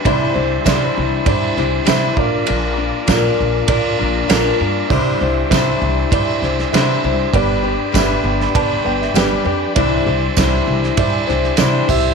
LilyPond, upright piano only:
\new Staff \with { instrumentName = "Upright piano" } { \time 4/4 \key c \major \tempo 4 = 99 << { r1 | r1 | r1 | r4. g''16 b''16 a''8 g''16 e''16 d''8 d''8 |
r1 | } \\ { <e' c'' d''>4 <e' c'' d''>4 <e' c'' d''>4 <e' c'' e''>8 <f' bes' d''>8~ | <f' bes' d''>8 r8 <f' bes' d''>4 <f' bes' d''>4 <f' bes' d''>4 | <e' c'' d''>4 <e' c'' e''>4 <e' c'' d''>4 <e' c'' e''>4 | <g' b' d''>4 <g' b' e''>4 <g' b' d''>4 <g' b'>4 |
<e' c'' d''>4 <e' c'' d''>4 <e' c'' d''>4 <e' c'' d''>8 <g' c'' e''>8 | } >> }